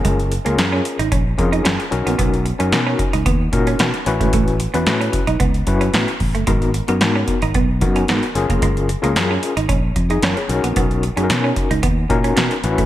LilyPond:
<<
  \new Staff \with { instrumentName = "Tine electric piano" } { \time 4/4 \key b \lydian \tempo 4 = 112 << { r1 | r1 | r1 | r1 |
r2 r8. <dis' gis'>16 <eis' ais'>16 <gis' cis''>8 r16 | r1 | } \\ { <cis' eis' gis' ais'>8 r16 <cis' eis' gis' ais'>4 r8. <cis' eis' gis' ais'>8. r16 <cis' dis' fis' ais'>8~ | <cis' dis' fis' ais'>8 r16 <cis' dis' fis' ais'>4 r8. <cis' dis' fis' ais'>8. r16 <cis' e' fis' b'>8~ | <cis' e' fis' b'>8 r16 <cis' e' fis' b'>4 r8. <cis' e' fis' b'>8. r8. | <b dis' fis' ais'>8 r16 <b dis' fis' ais'>4 r8. <b dis' fis' ais'>8. r16 <cis' eis' gis' ais'>8~ |
<cis' eis' gis' ais'>8 r16 <cis' eis' gis' ais'>4 r4. r16 <cis' dis' fis' ais'>8~ | <cis' dis' fis' ais'>8 r16 <cis' dis' fis' gis' ais'>4 r8. <cis' dis' fis' ais'>8. r16 <cis' e' fis' b'>8 | } >> }
  \new Staff \with { instrumentName = "Clean electric guitar" } { \time 4/4 \key b \lydian gis16 r8 ais16 r16 cis'16 r16 dis'16 cis'16 r8 dis'16 cis'16 r8 b16 | b16 r8 cis'16 r16 cis'16 r16 dis'16 b16 r8 cis'16 b16 r8 a16 | a16 r8 b16 r16 cis'16 r16 dis'16 b16 r8 cis'16 b16 r8 a16 | gis16 r8 b16 r16 cis'16 r16 dis'16 b16 r8 cis'16 b16 r8 ais16 |
gis16 r8 ais16 r16 cis'16 r16 dis'16 cis'16 r8 dis'16 cis'16 r8 b16 | b16 r8 cis'16 r16 cis'16 r16 dis'16 b16 r8 cis'16 b16 r8 a16 | }
  \new Staff \with { instrumentName = "Fingered electric bass" } { \clef bass \time 4/4 \key b \lydian fis,,8. cis,16 fis,8 r16 gis,,16 ais,,8 eis,8 fis,16 r16 b,,16 ais,,16 | b,,8. fis,16 b,8 r16 cis,16 dis,8 ais,8 b,16 r16 a,,16 gis,,16 | a,,8. e,16 a,8 r16 b,,16 cis,8 fis,8 a,16 r16 a,,16 fis,,16 | gis,,8. fis,16 gis,8 r16 gis,,16 b,,8 fis,8 gis,16 r16 fis,,16 eis,,16 |
fis,,8. cis,16 fis,8 r16 gis,,16 ais,,8 eis,8 fis,16 r16 b,,16 ais,,16 | b,,8. fis,16 b,8 r16 cis,16 dis,8 ais,8 b,16 r16 a,,16 gis,,16 | }
  \new DrumStaff \with { instrumentName = "Drums" } \drummode { \time 4/4 <hh bd>16 hh16 hh16 hh16 <hh sn>8 hh16 hh16 <hh bd>8 <hh bd>16 hh16 <hh sn>16 hh16 hh16 hh16 | <hh bd>16 hh16 hh16 hh16 <hh sn>8 <hh bd>16 hh16 <hh bd>8 <hh bd>16 hh16 <hh sn>16 hh16 hh16 <hh bd>16 | <hh bd>16 hh16 hh16 hh16 <hh sn>16 hh16 <hh bd>16 hh16 <hh bd>16 hh16 <hh bd>16 hh16 <hh sn>16 hh16 <hho bd>16 hh16 | <hh bd>16 hh16 hh16 hh16 <hh sn>8 <hh bd>16 hh16 <hh bd>8 <hh bd>16 hh16 <hh sn>16 hh16 hh16 <hh bd>16 |
<hh bd>16 hh16 hh16 hh16 <hh sn>8 hh16 hh16 <hh bd>8 <hh bd>16 hh16 <hh sn>16 hh16 hh16 hh16 | <hh bd>16 hh16 hh16 hh16 <hh sn>8 <hh bd>16 hh16 <hh bd>8 <hh bd>16 hh16 <hh sn>16 hh16 hh16 <hh bd>16 | }
>>